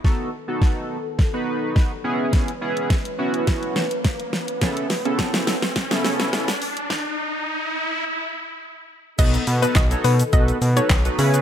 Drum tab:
CC |----------------|----------------|----------------|----------------|
HH |----------------|xx-xxx-xxx-xxx-x|xxoxxxoxxxoxxxox|----------------|
SH |----------------|----------------|----------------|----------------|
CP |----------------|----------------|----------------|----------------|
SD |o---o---o---o---|o---o---o-o-o-o-|o-o-oooooooooo--|o---------------|
BD |o---o---o---o---|o---o---o---o---|o---o---o-------|o---------------|

CC |x---------------|
HH |xxoxxxoxxxoxxxox|
SH |xxxxxxxxxxxxxxxx|
CP |----x-------x---|
SD |----o-------o---|
BD |o---o---o---o---|